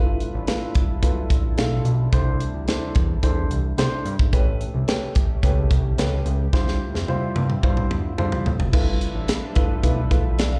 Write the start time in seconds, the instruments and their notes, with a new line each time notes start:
Already playing: analog synth bass G1, analog synth pad G3 D4 E4 F4 A4 B4, grand piano A3 E4 F4 B4
0.20 closed hi-hat
0.34 analog synth bass A1
0.47 grand piano A3 E4 F4 B4, snare, closed hi-hat
0.75 analog synth bass G1, kick, closed hi-hat
1.02 analog synth bass B1, grand piano A3 E4 F4 B4, kick, closed hi-hat
1.30 analog synth bass A1, kick, closed hi-hat
1.57 analog synth bass B1, grand piano A3 E4 F4 A4, snare, closed hi-hat
1.85 analog synth bass B1, closed hi-hat
2.12 analog synth bass C2, analog synth pad C3 A3, grand piano A3 D4 E4 C5, kick, closed hi-hat
2.40 closed hi-hat
2.54 analog synth bass D2
2.68 grand piano A3 D4 E4 C5, snare, closed hi-hat
2.95 analog synth bass E2, kick, closed hi-hat
3.23 analog synth bass E2, grand piano A3 D4 E4 C5, kick, closed hi-hat
3.50 analog synth bass C2, closed hi-hat
3.78 analog synth bass C3, grand piano A3 D4 E4 C5, snare, closed hi-hat
4.05 analog synth bass G2, closed hi-hat
4.19 analog synth bass G#1, kick
4.33 analog synth bass A1, grand piano A3 C#4 G4 B4, analog synth pad C#4 G4, kick, closed hi-hat
4.61 closed hi-hat
4.74 analog synth bass C2
4.88 grand piano A3 C#4 G4 B4, snare, closed hi-hat
5.15 analog synth bass A1, kick, closed hi-hat
5.43 analog synth bass C#2, grand piano A3 C#4 G4 B4, kick, closed hi-hat
5.71 analog synth bass C2, kick, closed hi-hat
5.98 analog synth bass C#2, grand piano A3 C#4 G4 B4, snare, closed hi-hat
6.25 analog synth bass C#2, closed hi-hat
6.53 analog synth bass D2, analog synth pad D3 C4 E4 F4, grand piano G3 E4 F4 C5, kick, snare
6.68 snare
6.94 analog synth bass F2, snare
7.08 grand piano G3 E4 F4 C5, high tom
7.36 analog synth bass G2, high tom
7.50 mid tom
7.63 analog synth bass G2, grand piano G3 E4 F4 C5, kick
7.77 mid tom
7.91 analog synth bass D2, mid tom
8.18 analog synth bass D3, grand piano G3 E4 F4 C5, mid tom
8.32 floor tom
8.46 analog synth bass A2, floor tom
8.60 analog synth bass F#1, floor tom
8.73 analog synth bass G1, analog synth pad F3 G3 D4 A4 B4 E5, grand piano A3 E4 F4 B4, kick, crash
9.01 closed hi-hat
9.14 analog synth bass A1
9.28 snare, closed hi-hat
9.55 analog synth bass G1, grand piano A3 E4 F4 B4, kick, closed hi-hat
9.83 analog synth bass B1, grand piano A3 E4 F4 B4, kick, closed hi-hat
10.11 analog synth bass A1, grand piano A3 E4 F4 B4, kick, closed hi-hat
10.38 analog synth bass B1, grand piano F4 D5, snare, closed hi-hat
10.52 grand piano A4 F5